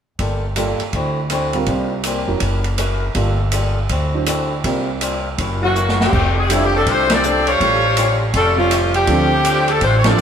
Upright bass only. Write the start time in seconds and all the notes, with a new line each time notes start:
0.19 G1
0.80 muted upright bass stroke
0.93 D2
1.67 C2
2.28 F1
2.40 F#1
3.15 G1
3.90 D2
4.64 C2
5.38 F#1
6.13 F1
6.87 C2
7.60 A1
8.34 F1
9.08 D2
9.82 A1
10.18 A1